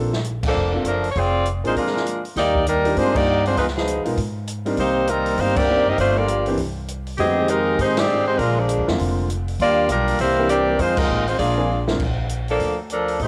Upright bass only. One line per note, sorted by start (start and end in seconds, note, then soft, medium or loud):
0.00 0.52 A#1 medium
0.54 0.83 F1 medium
0.84 1.13 F#1 medium
1.16 1.61 F1 medium
1.64 1.75 A1 medium
2.36 2.93 D#2 medium
2.96 3.54 G2 medium
3.57 4.02 C#2 medium
4.05 4.16 B1 medium
4.17 4.74 G#2 medium
4.77 5.35 C2 medium
5.38 5.83 G1 medium
5.86 5.97 F#1 medium
5.98 6.55 G1 medium
6.58 7.15 C2 medium
7.19 7.76 F2 medium
7.78 8.36 G#2 medium
8.38 8.76 A#1 medium
8.77 8.87 D2 medium
8.88 8.98 F2 medium
8.99 9.56 F1 medium
9.59 9.87 D#2 medium
9.89 10.17 B1 medium
10.19 10.76 C2 medium
10.79 11.07 F2 medium
11.10 11.37 A1 medium
11.39 11.96 A#1 medium
12.00 12.56 A#1 medium
12.60 13.17 D2 medium
13.19 13.28 A1 medium